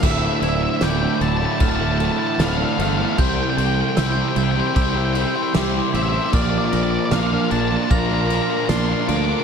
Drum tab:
CC |xxxxxxxx|xxxxxxxx|xxxxxxxx|
SD |--o---o-|--o---o-|--o---o-|
BD |o---o---|o---o---|o---o---|